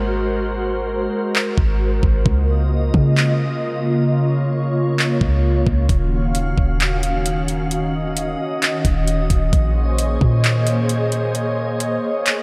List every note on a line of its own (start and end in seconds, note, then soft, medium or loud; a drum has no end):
0.00 1.08 G#1 loud
0.00 2.22 G#3 medium
0.00 2.22 F#4 medium
0.00 2.22 A#4 medium
0.00 2.22 C5 medium
1.36 clap loud
1.58 2.01 G#1 loud
1.58 kick medium
2.03 2.25 G#1 loud
2.03 kick medium
2.26 2.91 C#2 loud
2.26 5.86 C#3 medium
2.26 5.86 A#3 medium
2.26 5.86 F4 medium
2.26 4.06 D#5 medium
2.26 kick loud
2.94 4.72 C#3 loud
2.94 kick medium
3.17 clap loud
4.08 5.88 C#5 medium
4.99 clap loud
5.21 5.65 C#2 loud
5.21 kick medium
5.67 5.88 C#2 loud
5.67 kick loud
5.89 6.55 D#1 loud
5.89 9.50 D#3 medium
5.89 9.49 C#4 medium
5.89 9.49 F#4 medium
5.89 7.69 F5 medium
5.89 kick loud
5.89 closed hi-hat medium
6.35 closed hi-hat medium
6.58 8.35 D#1 loud
6.58 kick medium
6.80 clap loud
6.80 closed hi-hat medium
7.03 closed hi-hat medium
7.26 closed hi-hat medium
7.48 closed hi-hat medium
7.71 9.51 D#5 medium
7.71 closed hi-hat medium
8.17 closed hi-hat medium
8.62 clap loud
8.62 closed hi-hat medium
8.85 9.28 D#1 loud
8.85 kick medium
8.85 closed hi-hat medium
9.08 closed hi-hat medium
9.30 9.52 D#1 loud
9.30 kick loud
9.30 closed hi-hat medium
9.53 10.18 A#1 loud
9.53 12.43 A#3 medium
9.53 12.43 G#4 medium
9.53 12.43 C5 medium
9.53 12.43 C#5 medium
9.53 12.43 D#5 medium
9.53 kick loud
9.53 closed hi-hat medium
9.99 closed hi-hat medium
10.21 11.99 A#2 loud
10.21 kick medium
10.44 clap loud
10.44 closed hi-hat medium
10.67 closed hi-hat medium
10.89 closed hi-hat medium
11.12 closed hi-hat medium
11.35 closed hi-hat medium
11.80 closed hi-hat medium
12.26 clap loud
12.26 closed hi-hat medium